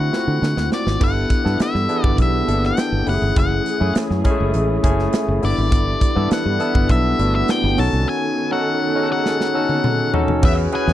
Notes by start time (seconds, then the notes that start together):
Already playing: A3 C4 E4 F#4 F#5
0.12 A3 C4 E4 F4, snare
0.20 F#4
0.27 D3
0.42 D3, snare
0.57 D2, snare
0.72 D5, snare
0.87 G#1, snare
1.00 G1 E3 B3 D4 E4 G4 A4 F#5, kick, crash
1.30 kick, closed hi-hat
1.44 G2 B3 D4 E4 A4, snare
1.60 E5, muted fingered electric bass stroke, snare, closed hi-hat
1.75 G2, snare
1.88 B3 D4 E4 G#4, closed hi-hat
1.96 A4
2.04 G1 D5, kick
2.18 B1 E5, kick, closed hi-hat
2.47 G1 A#3 D4 E4 A4, closed hi-hat
2.54 B3
2.64 G5, snare
2.77 snare, closed hi-hat
2.92 G1
3.06 F#1 E3 A3 C#4 E4 G4 G#4 F#5, open hi-hat
3.14 G#4
3.22 G1
3.36 F#1 F#5, kick, closed hi-hat
3.66 closed hi-hat
3.80 F#2 A3 C#4 E4 G#4
3.95 muted fingered electric bass stroke, snare, closed hi-hat
4.10 F#2, snare
4.24 G#3 C#4 E4 G#4, kick, closed hi-hat
4.31 A3
4.40 F#1
4.54 A1, closed hi-hat
4.83 F#1 A3 C#4 E4 G#4, kick, closed hi-hat
4.99 snare
5.13 snare, closed hi-hat
5.28 F#1
5.42 G1 G3 B3 D4 E4 A4 D5, open hi-hat
5.58 G#1
5.72 G1, kick, closed hi-hat
6.01 kick, closed hi-hat
6.15 G2 B3 D4 E4 A4
6.31 F#5, muted fingered electric bass stroke, snare, closed hi-hat
6.46 G2
6.59 B3 D4 E4 A4, closed hi-hat
6.75 G1, kick
6.89 B1 E5, kick, closed hi-hat
7.19 G1 A3 D4 E4 F#4, closed hi-hat
7.25 B3
7.35 E5
7.48 G5, snare, closed hi-hat
7.64 G1
7.77 B1 D#3 C#4 D#4 F#4 A4 A5, open hi-hat
7.93 C2
8.09 G#5
8.51 C#4 D#4 F#4 A4 F#5
8.95 C#4 D#4 F#4 G#4
9.03 A4
9.12 F#5
9.26 snare
9.41 snare
9.54 C#4 D#4 F#4 A4
9.69 high tom
9.84 mid tom
10.13 C#4 D#4 F#4 A4, floor tom
10.28 floor tom
10.43 E2 C#3 G#3 C#4 E4 F#4 G#4 B4 E5, kick, crash
10.72 C#4 F#4 G#4 B4 G#5, closed hi-hat
10.88 E2, snare